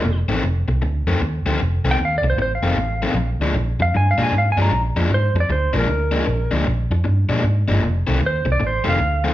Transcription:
0.00 0.18 A#4 medium
0.04 0.22 F1 medium
0.04 muted overdriven electric guitar stroke soft
0.28 0.39 A1 medium
0.28 0.43 F2 medium
0.28 0.43 D#3 medium
0.28 0.43 A3 medium
0.28 0.44 C4 medium
0.44 0.62 F1 medium
0.44 muted overdriven electric guitar stroke soft
0.68 0.79 C2 medium
0.68 muted overdriven electric guitar stroke soft
0.82 1.01 D2 medium
0.82 muted overdriven electric guitar stroke soft
1.07 1.18 F2 medium
1.07 1.20 F2 medium
1.07 1.20 D#3 medium
1.07 1.21 A3 medium
1.07 1.21 C4 medium
1.20 1.39 D#2 medium
1.20 muted overdriven electric guitar stroke soft
1.45 1.56 D2 medium
1.45 1.59 F2 medium
1.45 1.59 D#3 medium
1.45 1.59 A3 medium
1.45 1.60 C4 medium
1.60 1.78 F1 medium
1.60 muted overdriven electric guitar stroke soft
1.84 1.95 C2 medium
1.84 1.97 F2 medium
1.84 1.98 D#3 medium
1.84 1.98 A3 medium
1.84 1.99 C4 medium
1.91 2.02 G5 medium
1.98 2.17 D#2 medium
1.98 muted overdriven electric guitar stroke soft
2.05 2.15 F5 medium
2.18 2.28 D5 medium
2.22 2.34 C2 medium
2.22 muted overdriven electric guitar stroke soft
2.30 2.40 C5 medium
2.37 2.56 A1 medium
2.37 muted overdriven electric guitar stroke soft
2.42 2.53 C5 medium
2.55 3.29 F5 medium
2.62 2.73 F1 medium
2.62 2.76 F2 medium
2.62 2.77 D#3 medium
2.62 2.77 A3 medium
2.62 2.77 C4 loud
2.75 3.05 A1 medium
2.75 muted overdriven electric guitar stroke soft
3.02 3.17 F2 medium
3.02 3.16 D#3 medium
3.02 3.16 A3 medium
3.02 3.16 C4 medium
3.14 3.33 A#1 medium
3.14 muted overdriven electric guitar stroke soft
3.39 3.50 D2 medium
3.39 3.54 A#2 medium
3.39 3.54 F3 medium
3.39 3.55 G#3 medium
3.39 3.55 D4 loud
3.54 3.73 A#1 medium
3.54 muted overdriven electric guitar stroke soft
3.79 3.90 F2 medium
3.79 3.94 F5 medium
3.79 muted overdriven electric guitar stroke medium
3.94 4.12 G2 medium
3.94 4.08 G#5 medium
3.94 muted overdriven electric guitar stroke soft
4.11 4.22 F5 medium
4.18 4.29 A#2 medium
4.18 4.32 A#2 medium
4.18 4.32 F3 medium
4.18 4.32 G#3 medium
4.18 4.33 D4 medium
4.23 4.35 G#5 medium
4.32 4.51 G#2 medium
4.32 muted overdriven electric guitar stroke soft
4.38 4.49 F5 medium
4.52 4.61 G#5 medium
4.57 4.68 G2 medium
4.57 4.70 A#2 medium
4.57 4.71 F3 medium
4.57 4.71 G#3 medium
4.57 4.71 D4 medium
4.62 4.81 A#5 medium
4.71 4.89 A#1 loud
4.71 muted overdriven electric guitar stroke soft
4.96 5.07 F2 medium
4.96 5.10 A#2 medium
4.96 5.10 F3 medium
4.96 5.11 G#3 medium
4.96 5.11 D4 medium
5.10 5.28 G#2 medium
5.10 muted overdriven electric guitar stroke soft
5.14 5.37 C5 medium
5.34 5.45 F2 medium
5.34 muted overdriven electric guitar stroke medium
5.40 5.52 D5 medium
5.49 5.67 D2 medium
5.49 5.75 C5 medium
5.49 muted overdriven electric guitar stroke soft
5.73 5.84 A#1 medium
5.73 5.87 A#2 medium
5.73 5.87 F3 medium
5.73 5.88 G#3 medium
5.73 5.88 D4 medium
5.78 6.52 A#4 medium
5.88 6.16 D2 medium
5.88 muted overdriven electric guitar stroke soft
6.11 6.25 A#2 medium
6.11 6.25 F3 medium
6.11 6.25 G#3 medium
6.11 6.26 D4 medium
6.26 6.46 A#1 medium
6.26 muted overdriven electric guitar stroke soft
6.51 6.63 D2 medium
6.51 6.65 A#2 medium
6.51 6.66 F3 medium
6.51 6.66 G#3 medium
6.51 6.66 D4 medium
6.66 6.85 A#1 medium
6.66 muted overdriven electric guitar stroke soft
6.90 7.01 F2 medium
6.90 muted overdriven electric guitar stroke medium
7.04 7.24 G2 medium
7.04 muted overdriven electric guitar stroke soft
7.29 7.40 A#2 medium
7.29 7.43 A#2 medium
7.29 7.43 F3 medium
7.29 7.43 G#3 medium
7.29 7.43 D4 loud
7.44 7.62 G#2 medium
7.44 muted overdriven electric guitar stroke soft
7.68 7.79 G1 medium
7.68 7.84 A#2 medium
7.68 7.82 F3 medium
7.68 7.82 G#3 medium
7.68 7.83 D4 medium
7.82 8.02 F1 loud
7.82 muted overdriven electric guitar stroke soft
8.07 8.19 C2 medium
8.07 8.19 F2 medium
8.07 8.19 D#3 medium
8.07 8.20 A3 medium
8.07 8.20 C4 medium
8.20 8.40 D#2 medium
8.20 muted overdriven electric guitar stroke soft
8.26 8.49 C5 medium
8.45 8.57 C2 medium
8.45 muted overdriven electric guitar stroke medium
8.52 8.64 D5 medium
8.60 8.79 A1 medium
8.60 muted overdriven electric guitar stroke soft
8.67 8.88 C5 medium
8.84 8.97 F1 medium
8.84 8.98 F2 medium
8.84 8.98 D#3 medium
8.84 8.99 A3 medium
8.84 8.99 C4 medium
8.89 9.34 F5 medium
8.99 9.29 D2 medium
8.99 muted overdriven electric guitar stroke soft
9.24 9.34 F2 medium
9.24 9.34 D#3 medium
9.24 9.34 A3 medium
9.24 9.34 C4 medium

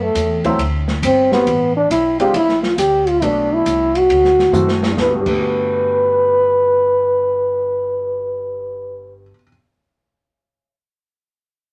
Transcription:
0.00 0.14 F#2 medium
0.00 0.45 A3 medium
0.15 0.58 E2 medium
0.15 kick soft
0.15 hi-hat pedal soft
0.15 ride medium
0.44 0.58 F#3 medium
0.44 0.58 A3 medium
0.44 0.58 C4 medium
0.44 0.58 E4 medium
0.44 kick medium
0.44 ride soft
0.58 1.01 D2 medium
0.58 kick soft
0.58 ride medium
0.88 snare soft
1.02 1.45 G1 medium
1.02 1.31 C4 medium
1.02 kick soft
1.02 hi-hat pedal medium
1.02 ride medium
1.32 1.45 G3 medium
1.32 1.46 B3 soft
1.32 1.73 B3 medium
1.32 1.46 C4 medium
1.32 1.46 F#4 medium
1.32 snare soft
1.47 1.89 A1 medium
1.47 kick soft
1.47 ride soft
1.77 1.90 D4 medium
1.90 2.33 B1 medium
1.90 2.18 E4 medium
1.90 kick soft
1.90 hi-hat pedal medium
1.90 ride medium
2.20 2.33 G#3 medium
2.20 2.33 C4 medium
2.20 2.33 D4 medium
2.20 2.34 F4 medium
2.20 2.34 G4 medium
2.20 ride soft
2.34 2.77 A#1 medium
2.34 2.65 E4 medium
2.34 kick soft
2.34 ride medium
2.49 snare soft
2.63 2.78 F4 medium
2.63 snare soft
2.78 3.21 D2 medium
2.78 3.10 G4 medium
2.78 kick soft
2.78 hi-hat pedal medium
2.78 ride medium
3.07 3.26 F4 medium
3.07 ride soft
3.21 3.64 B1 medium
3.21 3.89 A3 medium
3.21 3.89 B3 soft
3.21 3.90 D4 medium
3.21 3.56 D4 medium
3.21 3.90 F#4 medium
3.21 kick soft
3.21 ride medium
3.54 3.99 E4 medium
3.65 4.08 C2 medium
3.65 kick soft
3.65 hi-hat pedal medium
3.65 ride medium
3.95 4.84 F#4 medium
3.95 ride soft
4.09 4.52 D2 medium
4.09 kick soft
4.09 ride medium
4.24 snare soft
4.39 snare soft
4.52 4.95 F#2 medium
4.52 4.80 A3 medium
4.52 4.80 C4 medium
4.52 4.80 E4 medium
4.52 4.80 F#4 medium
4.52 hi-hat pedal medium
4.52 mid tom soft
4.68 snare soft
4.83 5.09 G2 medium
4.83 snare medium
4.92 5.12 G3 medium
4.97 5.13 G1 medium
4.97 5.15 A3 medium
4.97 5.15 B4 medium
4.97 kick soft
4.97 snare medium
5.04 5.18 B3 medium
5.10 5.21 F#4 medium
5.15 9.23 G2 medium
5.21 9.29 G3 medium
5.26 9.30 G1 medium
5.26 9.35 A3 medium
5.26 9.25 B4 medium
5.26 kick soft
5.26 crash soft
5.33 9.41 B3 soft
5.40 9.48 F#4 medium

